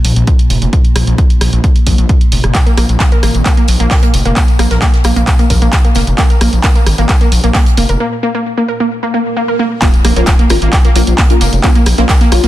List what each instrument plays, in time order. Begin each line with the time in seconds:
Already playing: synth drone A#2
0.04 analog synth bass A#1, open hi-hat
0.16 analog synth bass A#1, closed hi-hat
0.27 kick, closed hi-hat
0.39 closed hi-hat
0.50 analog synth bass F1, open hi-hat
0.62 analog synth bass F1, closed hi-hat
0.73 kick, closed hi-hat
0.85 closed hi-hat
0.95 analog synth bass A#1, cross-stick, open hi-hat
1.07 analog synth bass A#1, closed hi-hat
1.18 kick, closed hi-hat
1.30 closed hi-hat
1.41 analog synth bass A#1, cross-stick, open hi-hat
1.53 analog synth bass A#1, closed hi-hat
1.64 kick, closed hi-hat
1.76 closed hi-hat
1.87 analog synth bass A#1, kick, open hi-hat
1.98 analog synth bass A#1, closed hi-hat
2.09 kick, closed hi-hat
2.21 closed hi-hat
2.32 analog synth bass F1, open hi-hat
2.44 analog synth bass F1, cross-stick, closed hi-hat
2.55 kick, clap, closed hi-hat, tambourine
2.66 synth arpeggio sound A#3, closed hi-hat
2.77 analog synth bass A#1, synth arpeggio sound A#3, cross-stick, open hi-hat, tambourine
2.89 analog synth bass A#1, closed hi-hat
3.00 synth arpeggio sound A#3, kick, snare, clap, closed hi-hat, tambourine
3.12 synth arpeggio sound A#4, closed hi-hat
3.23 analog synth bass G#1, synth arpeggio sound A#3, cross-stick, open hi-hat, tambourine
3.35 analog synth bass G#1, closed hi-hat
3.46 synth arpeggio sound A#3, kick, clap, closed hi-hat, tambourine
3.57 synth arpeggio sound A#3, closed hi-hat
3.68 analog synth bass A#1, open hi-hat, tambourine
3.80 analog synth bass A#1, synth arpeggio sound A#3, closed hi-hat
3.91 synth arpeggio sound A#4, kick, snare, clap, closed hi-hat, open hi-hat
4.03 synth arpeggio sound A#3, closed hi-hat
4.14 analog synth bass F1, open hi-hat, tambourine
4.25 analog synth bass F1, synth arpeggio sound A#3, closed hi-hat
4.36 synth arpeggio sound A#3, kick, clap, closed hi-hat, tambourine
4.48 closed hi-hat
4.59 analog synth bass A#1, synth arpeggio sound A#3, cross-stick, open hi-hat, tambourine
4.71 analog synth bass A#1, synth arpeggio sound A#4, snare, closed hi-hat
4.82 synth arpeggio sound A#3, kick, snare, clap, closed hi-hat, tambourine
4.94 snare, closed hi-hat
5.04 analog synth bass A#1, synth arpeggio sound A#3, cross-stick, open hi-hat, tambourine
5.16 analog synth bass A#1, synth arpeggio sound A#3, closed hi-hat
5.27 kick, clap, closed hi-hat, tambourine
5.39 synth arpeggio sound A#3, closed hi-hat
5.50 analog synth bass A#1, synth arpeggio sound A#4, kick, open hi-hat, tambourine
5.62 analog synth bass A#1, synth arpeggio sound A#3, closed hi-hat
5.72 kick, snare, clap, closed hi-hat, tambourine
5.85 synth arpeggio sound A#3, closed hi-hat
5.95 analog synth bass F1, synth arpeggio sound A#3, snare, open hi-hat, tambourine
6.07 analog synth bass F1, closed hi-hat
6.18 synth arpeggio sound A#3, kick, clap, closed hi-hat, tambourine
6.30 synth arpeggio sound A#4, closed hi-hat
6.41 analog synth bass A#1, synth arpeggio sound A#3, cross-stick, open hi-hat, tambourine
6.53 analog synth bass A#1, closed hi-hat
6.64 synth arpeggio sound A#3, kick, snare, clap, closed hi-hat, tambourine
6.75 synth arpeggio sound A#3, closed hi-hat
6.86 analog synth bass G#1, cross-stick, open hi-hat, tambourine
6.98 analog synth bass G#1, synth arpeggio sound A#3, closed hi-hat
7.09 kick, clap, closed hi-hat, tambourine
7.21 synth arpeggio sound A#3, closed hi-hat
7.32 analog synth bass A#1, open hi-hat, tambourine
7.44 analog synth bass A#1, synth arpeggio sound A#3, closed hi-hat
7.54 synth arpeggio sound A#3, kick, snare, clap, closed hi-hat, open hi-hat
7.66 closed hi-hat
7.77 analog synth bass F1, synth arpeggio sound A#3, open hi-hat, tambourine
7.89 analog synth bass F1, synth arpeggio sound A#4, closed hi-hat
8.00 synth arpeggio sound A#3
8.23 synth arpeggio sound A#3
8.35 synth arpeggio sound A#3
8.57 synth arpeggio sound A#3
8.68 synth arpeggio sound A#4
8.80 synth arpeggio sound A#3
8.91 swell
9.03 synth arpeggio sound A#3
9.14 synth arpeggio sound A#3
9.37 synth arpeggio sound A#3
9.48 synth arpeggio sound A#4
9.59 synth arpeggio sound A#3
9.82 synth stab A#3 C#4 F4, synth arpeggio sound A#3, kick, clap, closed hi-hat, tambourine, impact
9.94 closed hi-hat
10.05 analog synth bass A#1, synth arpeggio sound A#3, cross-stick, open hi-hat, tambourine
10.16 analog synth bass A#1, synth stab A#3 C#4 F4, synth arpeggio sound A#3, closed hi-hat
10.27 kick, snare, clap, closed hi-hat, tambourine
10.39 synth arpeggio sound A#3, closed hi-hat
10.50 analog synth bass G#1, synth stab A#3 C#4 F4, synth arpeggio sound A#4, cross-stick, open hi-hat, tambourine
10.62 analog synth bass G#1, synth arpeggio sound A#3, closed hi-hat
10.73 kick, clap, closed hi-hat, tambourine
10.85 synth arpeggio sound A#3, closed hi-hat
10.96 analog synth bass A#1, synth stab A#3 C#4 F4, synth arpeggio sound A#3, open hi-hat, tambourine
11.07 analog synth bass A#1, closed hi-hat
11.18 synth arpeggio sound A#3, kick, snare, clap, closed hi-hat, open hi-hat
11.30 synth stab A#3 C#4 F4, synth arpeggio sound A#4, closed hi-hat
11.41 analog synth bass F1, synth arpeggio sound A#3, open hi-hat, tambourine
11.53 analog synth bass F1, closed hi-hat
11.64 synth stab A#3 C#4 F4, synth arpeggio sound A#3, kick, clap, closed hi-hat, tambourine
11.75 synth arpeggio sound A#3, closed hi-hat
11.86 analog synth bass A#1, cross-stick, open hi-hat, tambourine
11.98 analog synth bass A#1, synth stab A#3 C#4 F4, synth arpeggio sound A#3, snare, closed hi-hat
12.09 synth arpeggio sound A#4, kick, snare, clap, closed hi-hat, tambourine
12.21 synth arpeggio sound A#3, snare, closed hi-hat
12.32 analog synth bass A#1, synth stab A#3 C#4 F4, cross-stick, open hi-hat, tambourine
12.44 analog synth bass A#1, synth arpeggio sound A#3, closed hi-hat